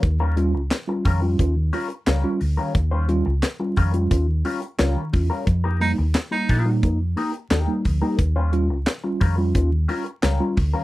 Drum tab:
HH |x-x-x-o-x-oxx-o-|x-x-x-oxx-oxx-o-|x-o-x-o-x-oxx-o-|x-x-x-o-x-oxx-o-|
CP |----x-------x---|----x-------x---|----x-------x---|----x-------x---|
SD |----o-------o---|----o-------o---|----o-------o---|----o-------o---|
BD |o-----o-o-------|o-----o-o-----o-|o-----o-o-----o-|o-----o-o-----o-|